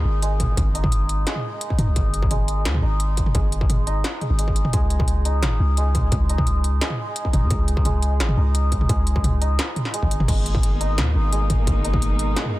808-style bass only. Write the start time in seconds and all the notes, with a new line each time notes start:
0.05 G#1
0.57 G#1
1.78 G#2
1.87 B1
1.96 G#1
2.65 D#2
2.83 G#1
3.35 G#1
4.30 G#1
4.74 C#2
5.43 G#1
5.60 C#2
6.12 C#2
7.33 G#1
7.42 F2
7.51 C#2
8.20 G#1
8.37 C#2
8.90 C#2
10.03 G#1
10.28 G#1
10.98 D#2
11.15 G#1
11.67 G#1